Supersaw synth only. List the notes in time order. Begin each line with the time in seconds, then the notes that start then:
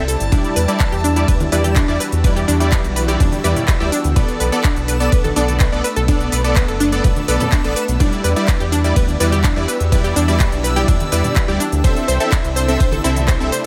0.32 G3 E4 D5
0.68 G3 E4 D5
1.16 G3 E4 D5
1.52 G3 E4 D5
1.88 G3 E4 D5
2.24 G3 E4 D5
2.60 G3 E4 D5
3.08 G3 E4 D5
3.44 G3 E4 D5
3.80 G3 E4 D5
4.16 B3 A4 D5
4.52 B3 A4 D5
5.00 B3 A4 D5
5.36 B3 A4 D5
5.72 B3 A4 D5
6.08 B3 A4 D5
6.44 B3 A4 D5
6.92 B3 A4 D5
7.28 B3 A4 D5
7.64 B3 A4 D5
8.00 G3 E4 D5
8.36 G3 E4 D5
8.84 G3 E4 D5
9.20 G3 E4 D5
9.56 G3 E4 D5
9.92 G3 E4 D5
10.28 G3 E4 D5
10.76 G3 E4 D5
11.12 G3 E4 D5
11.48 G3 E4 D5
11.84 C4 A4 E5
12.20 C4 A4 E5
12.68 C4 A4 E5
13.04 C4 A4 E5
13.40 C4 A4 E5